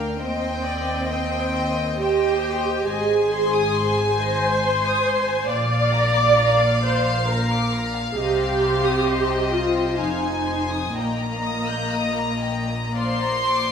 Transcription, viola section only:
0, 0, Header, 1, 2, 480
1, 0, Start_track
1, 0, Tempo, 865801
1, 115, Time_signature, 3, 2, 24, 8
1, 595, Tempo, 941915
1, 1075, Tempo, 875912
1, 3475, Tempo, 900901
1, 5395, Tempo, 972447
1, 6355, Tempo, 1015228
1, 7195, End_track
2, 0, Start_track
2, 0, Title_t, "Viola section"
2, 0, Program_c, 0, 48
2, 0, Note_on_c, 0, 62, 67
2, 105, Note_on_c, 0, 60, 77
2, 111, Note_off_c, 0, 62, 0
2, 1069, Note_on_c, 0, 67, 94
2, 1071, Note_off_c, 0, 60, 0
2, 1541, Note_off_c, 0, 67, 0
2, 1548, Note_on_c, 0, 68, 101
2, 2265, Note_off_c, 0, 68, 0
2, 2265, Note_on_c, 0, 72, 94
2, 2990, Note_on_c, 0, 74, 109
2, 2991, Note_off_c, 0, 72, 0
2, 3709, Note_on_c, 0, 72, 87
2, 3711, Note_off_c, 0, 74, 0
2, 3945, Note_off_c, 0, 72, 0
2, 3948, Note_on_c, 0, 70, 75
2, 4190, Note_off_c, 0, 70, 0
2, 4392, Note_on_c, 0, 68, 68
2, 4426, Note_on_c, 0, 67, 101
2, 4431, Note_off_c, 0, 68, 0
2, 5141, Note_on_c, 0, 65, 83
2, 5147, Note_off_c, 0, 67, 0
2, 5385, Note_on_c, 0, 63, 74
2, 5391, Note_off_c, 0, 65, 0
2, 5863, Note_on_c, 0, 58, 72
2, 5867, Note_off_c, 0, 63, 0
2, 7057, Note_off_c, 0, 58, 0
2, 7195, End_track
0, 0, End_of_file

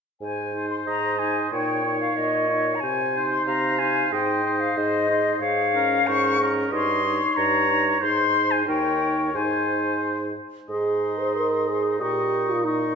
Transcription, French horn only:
0, 0, Header, 1, 2, 480
1, 0, Start_track
1, 0, Key_signature, -4, "major"
1, 0, Tempo, 651466
1, 150, Time_signature, 2, 2, 24, 8
1, 6388, Tempo, 673401
1, 7828, Tempo, 651466
1, 9493, End_track
2, 0, Start_track
2, 0, Title_t, "French horn"
2, 0, Program_c, 0, 60
2, 391, Note_on_c, 0, 63, 33
2, 864, Note_off_c, 0, 63, 0
2, 876, Note_on_c, 0, 63, 32
2, 1111, Note_off_c, 0, 63, 0
2, 1120, Note_on_c, 0, 63, 34
2, 1349, Note_off_c, 0, 63, 0
2, 1354, Note_on_c, 0, 63, 37
2, 1827, Note_off_c, 0, 63, 0
2, 1841, Note_on_c, 0, 63, 30
2, 2075, Note_off_c, 0, 63, 0
2, 2325, Note_on_c, 0, 63, 31
2, 2792, Note_off_c, 0, 63, 0
2, 2807, Note_on_c, 0, 63, 36
2, 3038, Note_off_c, 0, 63, 0
2, 3043, Note_on_c, 0, 63, 35
2, 3271, Note_off_c, 0, 63, 0
2, 3275, Note_on_c, 0, 63, 37
2, 3740, Note_off_c, 0, 63, 0
2, 3755, Note_on_c, 0, 63, 37
2, 3986, Note_off_c, 0, 63, 0
2, 4232, Note_on_c, 0, 61, 46
2, 4707, Note_off_c, 0, 61, 0
2, 4712, Note_on_c, 0, 61, 41
2, 4942, Note_off_c, 0, 61, 0
2, 4947, Note_on_c, 0, 63, 43
2, 5182, Note_off_c, 0, 63, 0
2, 5187, Note_on_c, 0, 63, 45
2, 5658, Note_off_c, 0, 63, 0
2, 5663, Note_on_c, 0, 63, 40
2, 5901, Note_off_c, 0, 63, 0
2, 5904, Note_on_c, 0, 63, 49
2, 6359, Note_off_c, 0, 63, 0
2, 6382, Note_on_c, 0, 63, 50
2, 6855, Note_off_c, 0, 63, 0
2, 6863, Note_on_c, 0, 63, 40
2, 7581, Note_off_c, 0, 63, 0
2, 7832, Note_on_c, 0, 68, 58
2, 8194, Note_on_c, 0, 72, 54
2, 8205, Note_off_c, 0, 68, 0
2, 8314, Note_off_c, 0, 72, 0
2, 8318, Note_on_c, 0, 70, 56
2, 8559, Note_on_c, 0, 68, 55
2, 8570, Note_off_c, 0, 70, 0
2, 8791, Note_off_c, 0, 68, 0
2, 8796, Note_on_c, 0, 67, 61
2, 9160, Note_on_c, 0, 65, 52
2, 9171, Note_off_c, 0, 67, 0
2, 9267, Note_on_c, 0, 63, 59
2, 9278, Note_off_c, 0, 65, 0
2, 9493, Note_off_c, 0, 63, 0
2, 9493, End_track
0, 0, End_of_file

